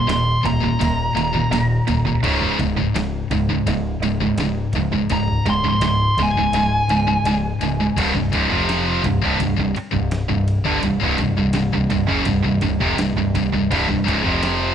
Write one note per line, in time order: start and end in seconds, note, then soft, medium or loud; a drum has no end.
0.07 0.36 D#1 medium
0.07 0.40 D#2 medium
0.07 0.40 A#2 medium
0.07 0.44 C6 medium
0.07 snare loud
0.07 ride loud
0.43 0.73 D#1 medium
0.43 0.60 D#2 medium
0.43 0.59 A#2 medium
0.43 2.56 A#5 loud
0.43 kick medium
0.43 ride medium
0.60 0.78 D#2 medium
0.60 0.78 A#2 medium
0.60 kick medium
0.79 1.09 D#1 loud
0.79 1.12 D#2 medium
0.79 1.12 A#2 medium
0.79 kick loud
0.79 ride loud
1.15 1.44 D#1 medium
1.15 1.32 D#2 medium
1.15 1.32 A#2 medium
1.15 ride medium
1.33 1.51 D#2 medium
1.33 1.51 A#2 medium
1.33 kick medium
1.50 1.79 D#1 medium
1.50 1.84 D#2 medium
1.50 1.84 A#2 medium
1.50 snare loud
1.50 ride loud
1.88 2.16 D#1 medium
1.88 2.06 D#2 medium
1.88 2.06 A#2 medium
1.88 kick medium
1.88 ride medium
2.06 2.22 D#2 medium
2.06 2.23 A#2 medium
2.06 kick medium
2.23 2.52 C#1 medium
2.23 2.57 C#2 medium
2.23 2.57 G#2 loud
2.23 2.57 C#3 loud
2.23 kick loud
2.23 crash loud
2.42 kick medium
2.59 2.88 C#1 medium
2.59 2.76 C#2 medium
2.59 2.76 G#2 medium
2.59 kick medium
2.59 ride medium
2.77 2.93 C#2 medium
2.77 2.93 G#2 medium
2.77 kick medium
2.94 3.23 C#1 medium
2.94 3.27 C#2 medium
2.94 3.27 G#2 medium
2.94 snare loud
2.94 ride loud
3.30 3.59 C#1 medium
3.30 3.48 C#2 medium
3.30 3.48 G#2 medium
3.30 kick medium
3.30 ride medium
3.49 3.65 C#2 medium
3.49 3.66 G#2 medium
3.49 kick medium
3.67 3.95 C#1 loud
3.67 3.99 C#2 medium
3.67 3.99 G#2 medium
3.67 kick loud
3.67 ride loud
4.01 4.30 C#1 medium
4.01 4.20 C#2 medium
4.01 4.19 G#2 medium
4.01 ride medium
4.20 4.39 C#2 medium
4.20 4.38 G#2 medium
4.20 kick medium
4.36 4.66 C#1 medium
4.36 4.71 C#2 medium
4.36 snare loud
4.36 ride loud
4.41 4.72 G#2 medium
4.73 5.02 C#1 medium
4.73 4.92 C#2 medium
4.73 4.92 G#2 medium
4.73 kick medium
4.73 ride medium
4.92 5.09 C#2 medium
4.92 5.10 G#2 medium
4.92 kick medium
5.10 5.38 C#1 medium
5.10 5.42 C#2 medium
5.10 5.43 G#2 loud
5.10 5.46 A#5 loud
5.10 kick loud
5.10 ride loud
5.28 kick medium
5.45 5.74 C#1 medium
5.45 5.63 C#2 medium
5.45 5.63 G#2 medium
5.45 kick medium
5.45 ride medium
5.50 5.65 C6 medium
5.64 5.81 C#2 medium
5.64 5.81 G#2 medium
5.64 kick medium
5.68 5.83 C6 medium
5.80 6.09 C#1 medium
5.80 6.14 C#2 medium
5.80 6.14 G#2 medium
5.80 snare loud
5.80 ride loud
5.86 6.19 C6 medium
6.17 6.46 C#1 medium
6.17 6.36 C#2 medium
6.17 6.36 G#2 medium
6.17 kick medium
6.17 ride medium
6.23 7.95 G#5 loud
6.36 6.53 C#2 medium
6.36 6.54 G#2 medium
6.36 kick medium
6.53 6.81 C#1 loud
6.53 6.86 C#2 medium
6.53 6.86 G#2 medium
6.53 ride loud
6.88 7.17 C#1 medium
6.88 7.06 C#2 medium
6.88 7.06 G#2 medium
6.88 ride medium
7.07 7.25 C#2 medium
7.07 7.25 G#2 medium
7.24 7.53 C#1 medium
7.24 7.58 C#2 medium
7.24 7.58 G#2 medium
7.24 ride loud
7.61 7.89 C#1 medium
7.61 7.79 C#2 medium
7.61 7.79 G#2 medium
7.61 ride medium
7.80 7.96 C#2 medium
7.80 7.97 G#2 medium
7.97 8.13 C1 medium
7.97 8.13 C2 loud
7.97 8.13 G2 loud
7.97 kick loud
7.97 crash loud
7.97 ride loud
8.14 8.31 C1 medium
8.14 8.32 C2 medium
8.14 8.32 G2 medium
8.14 kick medium
8.32 8.49 C#1 medium
8.32 8.49 C#2 medium
8.32 8.49 G#2 medium
8.32 kick loud
8.32 ride medium
8.49 9.00 F1 medium
8.49 9.02 F2 medium
8.49 9.02 C3 loud
8.49 9.03 F3 loud
8.49 kick loud
8.69 snare loud
8.69 ride medium
9.03 9.20 C1 medium
9.03 9.20 C2 medium
9.03 9.21 G2 medium
9.03 kick loud
9.03 ride medium
9.22 9.39 C1 medium
9.22 9.38 C2 loud
9.22 9.39 G2 medium
9.22 kick loud
9.39 9.56 C1 medium
9.39 9.56 C2 medium
9.39 9.55 G2 medium
9.39 kick medium
9.39 ride loud
9.57 9.74 C1 medium
9.57 9.73 C2 medium
9.57 9.75 G2 medium
9.57 kick medium
9.75 muted distorted electric guitar stroke medium
9.75 muted picked electric bass stroke soft
9.75 ride medium
9.91 10.27 C1 medium
9.91 10.21 C2 medium
9.91 10.21 G2 medium
9.91 kick medium
10.11 snare loud
10.11 ride loud
10.29 10.62 C1 medium
10.29 10.57 C2 medium
10.29 10.58 G2 medium
10.29 kick medium
10.48 ride medium
10.64 10.81 G1 medium
10.64 10.81 G2 medium
10.64 10.82 D3 loud
10.64 kick loud
10.82 10.99 C1 medium
10.82 10.99 C2 medium
10.82 10.99 G2 medium
10.82 kick medium
10.82 ride medium
11.00 11.17 C1 loud
11.00 11.17 C2 medium
11.00 11.17 G2 loud
11.00 kick loud
11.18 11.35 C1 medium
11.18 11.36 C2 medium
11.18 11.37 G2 medium
11.18 kick medium
11.18 ride medium
11.37 11.53 C1 medium
11.37 11.53 C2 medium
11.37 11.53 G2 medium
11.37 kick medium
11.53 11.71 C1 medium
11.53 11.72 C2 medium
11.53 11.72 G2 medium
11.53 snare loud
11.53 ride loud
11.72 11.89 C1 medium
11.72 11.90 C2 medium
11.72 11.90 G2 medium
11.72 kick medium
11.90 12.07 C1 medium
11.90 12.08 C2 medium
11.90 12.09 G2 medium
11.90 kick medium
11.90 ride medium
12.08 12.25 F#1 medium
12.08 12.25 F#2 medium
12.08 12.25 C#3 loud
12.08 kick loud
12.25 12.43 C1 medium
12.25 12.43 C2 medium
12.25 12.44 G2 medium
12.25 kick loud
12.25 ride loud
12.44 12.60 C1 medium
12.44 12.61 C2 medium
12.44 12.62 G2 medium
12.44 kick medium
12.61 12.79 C1 medium
12.61 12.80 C2 medium
12.61 12.80 G2 medium
12.61 kick loud
12.61 ride medium
12.80 12.97 F1 loud
12.80 12.97 F2 medium
12.80 12.97 C3 loud
12.80 kick loud
12.97 13.14 C1 medium
12.97 13.16 C2 medium
12.97 13.17 G2 medium
12.97 snare loud
12.97 ride loud
13.16 13.32 C1 medium
13.16 13.35 C2 medium
13.16 13.35 G2 medium
13.16 kick loud
13.34 13.51 C1 medium
13.34 13.52 C2 medium
13.34 13.53 G2 medium
13.34 kick loud
13.34 ride medium
13.52 13.69 C1 medium
13.52 13.70 C2 medium
13.52 13.70 G2 medium
13.52 kick medium
13.71 13.87 C1 medium
13.71 13.87 C2 loud
13.71 13.87 G2 medium
13.71 kick loud
13.71 crash loud
13.88 14.04 C1 medium
13.88 14.04 C2 medium
13.88 14.05 G2 medium
13.88 kick loud
14.04 14.23 C#1 medium
14.04 14.21 C#2 medium
14.04 14.22 G#2 medium
14.04 kick loud
14.08 ride medium
14.22 14.73 F1 medium
14.22 14.75 F2 medium
14.22 14.75 C3 loud
14.22 14.75 F3 medium
14.22 kick loud
14.43 snare loud
14.43 ride loud